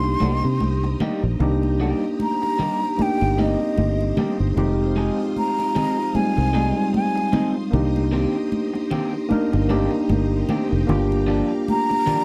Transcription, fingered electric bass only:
0.00 0.15 C2 medium
0.22 0.41 C2 medium
0.45 0.58 C3 medium
0.61 0.94 C2 medium
1.23 1.38 A#1 medium
1.40 1.93 C2 medium
2.99 muted fingered electric bass stroke soft
3.22 3.55 G1 medium
3.78 4.11 G1 medium
4.40 4.54 G1 medium
4.57 5.09 F1 loud
6.15 muted fingered electric bass stroke soft
6.38 6.71 C2 medium
7.73 8.25 C2 loud
9.32 muted fingered electric bass stroke soft
9.54 9.87 G1 medium
10.10 10.43 G1 medium
10.72 10.86 F1 medium
10.89 11.41 G1 loud

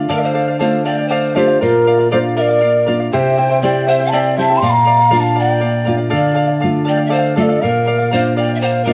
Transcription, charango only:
0.09 0.32 A4 medium
0.09 0.33 D5 medium
0.09 0.34 F5 medium
0.34 0.47 A4 medium
0.34 0.47 D5 medium
0.34 0.46 F5 medium
0.48 0.59 D5 soft
0.48 0.59 F5 soft
0.59 0.83 A4 medium
0.59 0.84 D5 medium
0.59 0.84 F5 medium
0.85 0.98 A4 medium
0.85 0.98 D5 medium
0.85 0.97 F5 medium
0.98 1.10 D5 soft
0.98 1.10 F5 soft
1.10 1.33 A4 medium
1.10 1.35 D5 medium
1.10 1.35 F5 medium
1.35 1.48 A4 medium
1.35 1.48 D5 medium
1.35 1.46 F5 medium
1.47 1.61 D5 soft
1.47 1.60 F5 soft
1.61 1.85 A#4 medium
1.61 1.86 D5 medium
1.61 1.86 F5 medium
1.86 1.99 A#4 soft
1.86 1.99 D5 medium
1.86 1.98 F5 medium
1.99 2.11 D5 soft
1.99 2.11 F5 soft
2.12 2.35 A#4 medium
2.12 2.36 D5 medium
2.12 2.37 F5 medium
2.36 2.49 A#4 medium
2.36 2.49 D5 medium
2.36 2.48 F5 medium
2.49 2.60 D5 soft
2.49 2.61 F5 soft
2.61 2.85 A#4 medium
2.61 2.86 D5 medium
2.61 2.86 F5 medium
2.86 2.99 A#4 medium
2.86 3.00 D5 medium
2.86 2.98 F5 medium
3.00 3.12 D5 soft
3.00 3.12 F5 soft
3.13 3.37 E4 medium
3.13 3.38 G4 medium
3.13 3.37 C5 medium
3.13 3.36 E5 medium
3.13 3.38 G5 medium
3.37 3.50 E4 medium
3.37 3.49 C5 medium
3.37 3.50 E5 medium
3.37 3.48 G5 medium
3.49 3.62 E4 soft
3.49 3.63 C5 soft
3.49 3.62 G5 medium
3.63 3.86 E4 medium
3.63 3.87 C5 medium
3.63 3.85 E5 medium
3.63 3.87 G5 medium
3.86 4.00 E4 medium
3.86 4.00 C5 medium
3.86 3.99 E5 medium
3.86 3.98 G5 medium
4.00 4.12 E4 soft
4.00 4.13 C5 soft
4.00 4.12 G5 medium
4.13 4.36 E4 medium
4.13 4.38 G4 medium
4.13 4.37 C5 medium
4.13 4.35 E5 medium
4.13 4.37 G5 medium
4.36 4.50 E4 medium
4.36 4.49 C5 medium
4.36 4.49 E5 medium
4.36 4.48 G5 medium
4.49 4.62 E4 soft
4.49 4.62 C5 soft
4.49 4.62 G5 soft
4.62 4.84 A#4 medium
4.62 4.86 D5 medium
4.62 4.86 F5 medium
4.85 4.99 A#4 medium
4.85 4.99 D5 medium
4.85 4.97 F5 medium
4.99 5.10 D5 soft
4.99 5.10 F5 soft
5.10 5.33 A#4 medium
5.10 5.34 D5 medium
5.10 5.34 F5 medium
5.35 5.49 A#4 medium
5.35 5.48 D5 medium
5.35 5.47 F5 medium
5.48 5.60 D5 soft
5.48 5.60 F5 soft
5.60 5.84 A#4 medium
5.60 5.85 D5 soft
5.60 5.86 F5 medium
5.85 5.99 A#4 medium
5.85 5.97 D5 medium
5.85 5.96 F5 medium
5.97 6.09 D5 soft
5.97 6.09 F5 soft
6.10 6.33 A4 medium
6.10 6.34 D5 medium
6.10 6.35 F5 medium
6.34 6.48 A4 medium
6.34 6.47 D5 medium
6.34 6.46 F5 medium
6.47 6.60 D5 soft
6.47 6.60 F5 medium
6.60 6.83 A4 medium
6.60 6.84 D5 medium
6.60 6.85 F5 medium
6.85 6.98 A4 medium
6.85 6.97 D5 medium
6.85 6.96 F5 medium
6.97 7.09 D5 soft
6.97 7.09 F5 soft
7.09 7.35 A4 medium
7.09 7.36 D5 medium
7.09 7.36 F5 medium
7.36 7.49 A4 medium
7.36 7.49 D5 medium
7.36 7.47 F5 medium
7.48 7.61 D5 soft
7.48 7.62 F5 soft
7.61 7.85 A#4 medium
7.61 7.86 D5 medium
7.61 7.86 F5 medium
7.86 7.99 A#4 medium
7.86 7.98 D5 medium
7.86 7.97 F5 medium
7.99 8.11 D5 soft
7.99 8.11 F5 soft
8.11 8.35 A#4 medium
8.11 8.36 D5 medium
8.11 8.36 F5 medium
8.36 8.49 A#4 medium
8.36 8.49 D5 medium
8.36 8.48 F5 medium
8.49 8.61 D5 soft
8.49 8.62 F5 soft
8.62 8.85 A#4 medium
8.62 8.86 D5 medium
8.62 8.86 F5 medium
8.86 8.93 A#4 medium
8.86 8.93 D5 medium
8.86 8.93 F5 medium

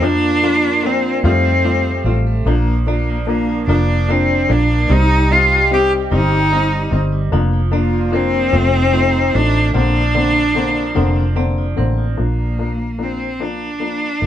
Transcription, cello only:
0.04 0.87 D4 loud
0.86 1.23 C4 medium
1.24 2.12 C4 medium
2.46 2.84 A#3 medium
2.89 3.26 A#3 medium
3.28 3.66 A#3 medium
3.69 4.12 D4 medium
4.10 4.53 C4 medium
4.51 4.93 D4 medium
4.92 5.34 D#4 loud
5.32 5.72 F4 medium
5.73 5.91 G4 loud
6.12 6.98 D#4 medium
7.73 8.16 A#3 medium
8.15 9.37 C4 loud
9.35 9.75 D4 loud
9.76 11.34 D4 loud
12.18 13.04 A#3 medium
13.02 13.43 C4 medium
13.42 14.27 D4 medium

